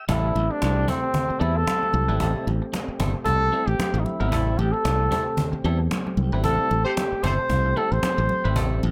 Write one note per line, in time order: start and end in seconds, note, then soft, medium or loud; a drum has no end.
0.08 0.31 A1 loud
0.08 0.33 G3 medium
0.08 8.91 A3 medium
0.08 8.91 C4 medium
0.08 0.34 C4 medium
0.08 0.34 E4 medium
0.08 0.53 E4 medium
0.08 8.91 G4 medium
0.08 0.34 A4 medium
0.08 cajon bass loud
0.35 0.48 A1 medium
0.35 muted conga medium
0.51 0.90 D4 medium
0.51 muted clean electric guitar stroke soft
0.62 0.84 C2 medium
0.62 muted clean electric guitar stroke soft
0.62 cajon slap loud
0.62 high conga medium
0.88 1.00 G3 medium
0.88 1.00 C4 medium
0.88 1.42 C4 loud
0.88 1.00 E4 medium
0.88 1.00 A4 medium
0.88 cajon bass medium
0.88 muted conga medium
1.04 muted clean electric guitar stroke soft
1.14 muted clean electric guitar stroke soft
1.14 cajon bass medium
1.14 cajon slap medium
1.14 low conga medium
1.29 muted clean electric guitar stroke soft
1.29 muted fingered electric bass stroke soft
1.40 1.63 E2 medium
1.40 1.55 G3 medium
1.40 1.54 C4 medium
1.40 1.58 E4 medium
1.40 1.54 E4 medium
1.40 1.54 A4 medium
1.40 cajon slap soft
1.40 muted conga soft
1.55 2.36 A4 loud
1.55 muted clean electric guitar stroke soft
1.67 muted clean electric guitar stroke soft
1.67 cajon slap loud
1.67 high conga medium
1.82 muted clean electric guitar stroke soft
1.82 high conga soft
1.93 2.06 C2 medium
1.93 high conga medium
2.08 2.19 G#1 medium
2.08 2.19 G3 medium
2.08 2.20 C4 medium
2.08 2.20 E4 medium
2.08 2.20 B4 medium
2.20 2.33 A1 loud
2.20 2.45 G3 medium
2.20 2.45 C4 medium
2.20 2.45 E4 medium
2.20 2.45 A4 medium
2.20 cajon bass loud
2.47 2.60 A1 medium
2.47 muted conga medium
2.62 muted clean electric guitar stroke soft
2.73 muted clean electric guitar stroke soft
2.73 cajon slap loud
2.73 high conga medium
2.88 muted fingered electric bass stroke soft
3.00 3.12 G1 loud
3.00 3.11 G3 medium
3.00 3.12 C4 medium
3.00 3.12 E4 medium
3.00 3.12 A4 medium
3.00 cajon bass loud
3.00 muted conga medium
3.15 muted clean electric guitar stroke soft
3.25 3.48 C2 medium
3.25 3.68 A4 loud
3.25 muted clean electric guitar stroke soft
3.25 cajon bass medium
3.25 cajon slap soft
3.41 muted clean electric guitar stroke soft
3.52 3.67 G3 medium
3.52 3.67 C4 medium
3.52 3.66 E4 medium
3.52 3.66 A4 medium
3.52 cajon slap soft
3.67 3.77 A1 medium
3.67 4.00 G4 loud
3.67 muted clean electric guitar stroke soft
3.79 muted clean electric guitar stroke soft
3.79 muted fingered electric bass stroke soft
3.79 cajon slap loud
3.79 high conga medium
3.94 4.04 A1 medium
3.94 muted clean electric guitar stroke soft
3.94 high conga soft
3.99 4.06 D#4 medium
4.04 4.60 E4 loud
4.04 high conga medium
4.20 4.32 G#1 medium
4.20 4.30 G3 medium
4.20 4.30 C4 medium
4.20 4.31 E4 medium
4.20 4.32 B4 medium
4.31 4.55 A1 loud
4.31 4.56 G3 medium
4.31 4.56 C4 medium
4.31 4.57 E4 medium
4.31 4.57 A4 medium
4.31 cajon bass loud
4.58 4.71 A1 medium
4.58 4.73 G4 medium
4.58 muted conga medium
4.72 5.52 A4 medium
4.72 muted clean electric guitar stroke medium
4.85 5.08 C2 medium
4.85 muted clean electric guitar stroke soft
4.85 cajon slap loud
4.85 high conga medium
5.11 5.23 G3 medium
5.11 5.23 C4 medium
5.11 5.24 E4 medium
5.11 5.24 A4 medium
5.11 cajon bass medium
5.11 muted conga soft
5.26 muted clean electric guitar stroke soft
5.37 muted clean electric guitar stroke soft
5.37 cajon bass medium
5.37 cajon slap soft
5.37 low conga medium
5.52 muted clean electric guitar stroke soft
5.52 muted fingered electric bass stroke medium
5.64 5.87 E2 medium
5.64 5.80 G3 medium
5.64 5.79 C4 medium
5.64 5.79 E4 medium
5.64 5.78 A4 medium
5.64 cajon slap soft
5.64 muted conga soft
5.80 muted clean electric guitar stroke soft
5.91 muted clean electric guitar stroke soft
5.91 cajon slap loud
5.91 high conga medium
6.07 muted clean electric guitar stroke soft
6.07 high conga medium
6.17 6.30 C2 medium
6.17 high conga medium
6.32 6.42 G#1 medium
6.32 6.44 G3 medium
6.32 6.45 C4 medium
6.32 6.45 E4 medium
6.32 6.45 B4 medium
6.44 6.57 A1 loud
6.44 6.69 G3 medium
6.44 6.70 C4 medium
6.44 6.70 E4 medium
6.44 6.83 A4 loud
6.44 6.70 A4 medium
6.44 cajon bass medium
6.71 6.84 A1 medium
6.71 muted conga medium
6.84 6.93 A3 medium
6.84 6.93 G4 medium
6.84 7.25 G4 loud
6.84 6.92 C5 medium
6.84 muted clean electric guitar stroke medium
6.97 muted clean electric guitar stroke soft
6.97 cajon slap loud
6.97 high conga medium
7.12 muted fingered electric bass stroke soft
7.23 7.36 G1 loud
7.23 7.36 G3 medium
7.23 7.33 A3 medium
7.23 7.36 C4 medium
7.23 7.36 E4 medium
7.23 7.33 G4 medium
7.23 7.36 A4 medium
7.23 7.33 C5 medium
7.23 7.79 C5 loud
7.23 cajon bass medium
7.23 muted conga medium
7.39 muted clean electric guitar stroke soft
7.50 7.73 C2 medium
7.50 muted clean electric guitar stroke soft
7.50 cajon bass medium
7.50 cajon slap medium
7.66 muted clean electric guitar stroke soft
7.77 7.92 G3 medium
7.77 7.91 C4 medium
7.77 7.90 E4 medium
7.77 7.94 A4 loud
7.77 7.90 A4 medium
7.77 muted conga soft
7.91 8.02 A1 medium
7.91 8.72 C5 loud
7.91 muted clean electric guitar stroke soft
8.03 muted clean electric guitar stroke soft
8.03 muted fingered electric bass stroke soft
8.03 cajon slap loud
8.03 high conga medium
8.18 8.28 A1 medium
8.18 muted clean electric guitar stroke soft
8.18 high conga medium
8.29 high conga medium
8.45 8.56 G#1 medium
8.45 8.54 G3 medium
8.45 8.55 C4 medium
8.45 8.55 E4 medium
8.45 8.56 B4 medium
8.56 8.79 A1 loud
8.56 8.81 G3 medium
8.56 8.81 C4 medium
8.56 8.81 E4 medium
8.56 8.81 A4 medium
8.56 cajon bass loud
8.83 8.91 A1 loud
8.83 muted conga medium